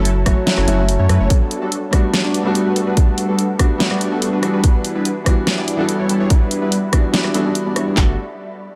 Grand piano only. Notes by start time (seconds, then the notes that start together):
Already playing: F#3 A3 C#4 E4 F#4
0.25 F#3 A3 C#4 E4 F#4
0.46 F#3 A3 C#4 E4 F#4
0.67 F#3 A3 C#4 E4 F#4
0.76 F#3 A3 C#4 E4 F#4
1.91 G3 A3 B3 D4
1.95 F#4
2.43 G3 A3 B3 D4 F#4
3.58 G3 A3 B3 D4 F#4
3.78 G3 A3 B3 D4 F#4
4.41 E3 G3 B3 D4 F#4
5.24 E3 G3 B3 D4
5.28 F#4
5.76 E3 G3 B3 D4
5.81 F#4
6.92 E3 G3 B3 D4 F#4
7.13 E3 G3 B3 D4 F#4
7.33 E3 G3 B3 D4 F#4
7.43 E3 G3 B3 D4 E4
7.94 G3 A3 B3
7.99 D4 F#4